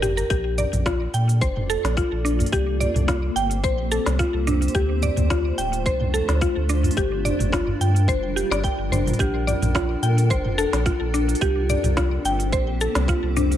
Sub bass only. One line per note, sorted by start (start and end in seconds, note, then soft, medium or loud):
0.00 0.24 G1 medium
0.30 0.66 A#1 medium
0.73 1.07 A#1 loud
1.14 1.43 A#2 medium
1.41 1.77 F1 medium
1.84 2.03 A#1 loud
2.12 2.46 A#1 medium
2.53 2.88 C2 medium
2.95 3.30 C2 loud
3.35 3.65 G1 medium
3.63 3.99 A#1 medium
4.06 4.25 C2 loud
4.34 4.68 C2 medium
4.75 5.10 D2 medium
5.17 5.52 D2 loud
5.58 5.87 D1 medium
5.86 6.21 C2 medium
6.28 6.47 D2 loud
6.56 6.91 D2 medium
6.97 7.32 G1 medium
7.40 7.74 G1 loud
7.80 8.09 G2 medium
8.08 8.43 F1 medium
8.51 8.69 G1 loud
8.78 9.13 G1 loud
9.19 9.55 A#1 medium
9.62 9.96 A#1 loud
10.02 10.32 A#2 medium
10.30 10.66 F1 medium
10.73 10.92 A#1 loud
11.00 11.35 A#1 medium
11.41 11.77 C2 medium
11.84 12.18 C2 loud
12.24 12.54 G1 medium
12.52 12.88 A#1 medium
12.95 13.14 C2 loud
13.23 13.57 C2 medium